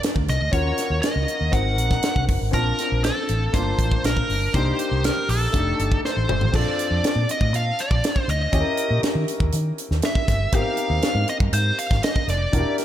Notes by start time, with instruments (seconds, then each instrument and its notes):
Already playing: grand piano D4 D#4 F4 A#4
0.03 snare, closed hi-hat
0.16 fingered electric bass D2, kick
0.28 fingered electric bass C2, lead electric guitar D#5, snare, closed hi-hat
0.41 fingered electric bass D2
0.51 fingered electric bass D#2, grand piano C#4 F4 F#4 A#4, lead electric guitar C#5, kick, closed hi-hat
0.78 snare, closed hi-hat
0.90 fingered electric bass D#2
1.02 lead electric guitar D#5, snare, closed hi-hat
1.16 fingered electric bass C#2
1.28 closed hi-hat
1.41 fingered electric bass D#2
1.51 fingered electric bass G#1, grand piano C4 D#4 F#4 A#4, lead electric guitar F#5, kick, closed hi-hat
1.78 fingered electric bass A#1, closed hi-hat
1.91 kick, snare
2.02 snare, closed hi-hat
2.16 fingered electric bass C2, kick
2.29 fingered electric bass F#1, kick, open hi-hat
2.41 fingered electric bass G#1
2.51 fingered electric bass A#1, grand piano C4 D4 F4 A5, lead electric guitar A#4, kick, closed hi-hat
2.78 snare, closed hi-hat
2.92 fingered electric bass A#1
3.04 lead electric guitar A4, snare, closed hi-hat
3.29 fingered electric bass A1, closed hi-hat
3.52 fingered electric bass G1, grand piano A#3 D4 F4 A5, lead electric guitar C5, kick, closed hi-hat
3.79 fingered electric bass A1, kick, closed hi-hat
3.92 kick
4.04 fingered electric bass A#1, lead electric guitar A#4, snare, closed hi-hat
4.17 kick
4.29 fingered electric bass G1, open hi-hat
4.53 fingered electric bass C2, grand piano A#3 D4 D#4 G4, lead electric guitar C5, kick, closed hi-hat
4.79 closed hi-hat
4.91 fingered electric bass C2
5.04 lead electric guitar A#4, snare, closed hi-hat
5.29 fingered electric bass A#1, lead electric guitar A4, open hi-hat
5.52 fingered electric bass F1, grand piano A3 D4 D#4 G4, kick, closed hi-hat
5.79 fingered electric bass G1, closed hi-hat
5.92 kick
6.05 lead electric guitar C5, snare
6.17 fingered electric bass A1
6.29 fingered electric bass G1, mid tom
6.41 fingered electric bass A1, floor tom
6.52 fingered electric bass A#1, grand piano C4 D4 F4 A4, lead electric guitar D5, kick, crash
6.79 closed hi-hat
6.91 fingered electric bass F2
7.03 muted fingered electric bass stroke, snare, closed hi-hat
7.16 fingered electric bass A#2
7.29 lead electric guitar D#5, closed hi-hat
7.41 fingered electric bass A2, kick
7.53 fingered electric bass A#2, lead electric guitar F5, closed hi-hat
7.79 lead electric guitar D5, closed hi-hat
7.91 fingered electric bass A#1, kick
8.04 snare, closed hi-hat
8.16 kick
8.28 fingered electric bass D2, lead electric guitar D#5, closed hi-hat
8.52 fingered electric bass D#2, grand piano C#4 E4 G4 G#4, kick, closed hi-hat
8.60 grand piano A#4
8.77 closed hi-hat
8.91 fingered electric bass A#2
9.03 muted fingered electric bass stroke, snare, closed hi-hat
9.15 fingered electric bass D#3
9.28 closed hi-hat
9.40 fingered electric bass D#2, kick
9.52 fingered electric bass D#3, closed hi-hat
9.78 closed hi-hat
9.91 fingered electric bass D#2, snare
10.02 lead electric guitar E5, snare, closed hi-hat
10.15 kick
10.28 fingered electric bass G1, kick, snare, closed hi-hat
10.52 fingered electric bass G#1, grand piano B3 D#4 G4 A#4, lead electric guitar F5, kick, closed hi-hat
10.58 grand piano C4
10.77 closed hi-hat
10.90 fingered electric bass D#2
11.02 snare, closed hi-hat
11.15 fingered electric bass G#2
11.28 lead electric guitar D#5, closed hi-hat
11.40 fingered electric bass G2, kick
11.53 fingered electric bass G#2, lead electric guitar C5, closed hi-hat
11.78 lead electric guitar F5, closed hi-hat
11.91 fingered electric bass G#1, kick, snare
12.03 lead electric guitar D#5, snare, closed hi-hat
12.16 kick
12.28 fingered electric bass F1, lead electric guitar D5, snare, closed hi-hat
12.52 fingered electric bass E1, grand piano D4 E4 F#4 A#4, kick, closed hi-hat
12.60 grand piano G4
12.78 snare, closed hi-hat